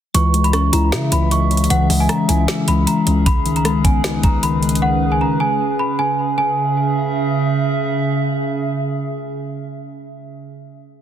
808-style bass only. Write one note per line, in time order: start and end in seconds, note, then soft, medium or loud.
0.15 0.71 C#2 loud
0.73 0.94 C#2 loud
0.92 1.11 C#3 loud
1.12 1.68 C#2 loud
1.70 1.89 C#2 loud
1.90 2.09 C#2 loud
2.29 2.47 C#2 loud
2.68 2.86 C#2 loud
3.07 3.25 C#2 loud